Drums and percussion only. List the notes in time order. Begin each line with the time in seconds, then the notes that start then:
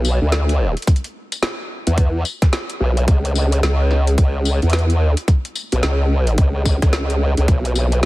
0.05 tambourine
0.32 snare, closed hi-hat
0.49 closed hi-hat
0.77 closed hi-hat
0.82 closed hi-hat
0.87 kick, snare, closed hi-hat
0.96 closed hi-hat
1.04 closed hi-hat
1.32 closed hi-hat, tambourine
1.43 snare, closed hi-hat
1.87 closed hi-hat
1.98 kick, closed hi-hat
2.25 tambourine
2.42 kick, snare, closed hi-hat
2.53 snare, closed hi-hat
2.70 closed hi-hat
2.97 closed hi-hat
3.08 kick, snare, closed hi-hat
3.25 closed hi-hat
3.35 tambourine
3.52 closed hi-hat
3.63 snare, closed hi-hat
3.91 snare
4.07 closed hi-hat
4.18 kick, closed hi-hat
4.45 tambourine
4.62 closed hi-hat
4.70 snare, closed hi-hat
4.73 closed hi-hat
4.79 closed hi-hat
4.90 closed hi-hat
5.17 closed hi-hat
5.28 kick, snare, closed hi-hat
5.45 closed hi-hat
5.55 tambourine
5.72 closed hi-hat
5.83 snare, closed hi-hat
6.27 closed hi-hat
6.38 kick, closed hi-hat
6.65 kick, tambourine
6.82 kick, snare, closed hi-hat
6.93 snare, closed hi-hat
7.10 closed hi-hat
7.37 closed hi-hat
7.48 kick, snare, closed hi-hat
7.65 closed hi-hat
7.75 tambourine
7.92 closed hi-hat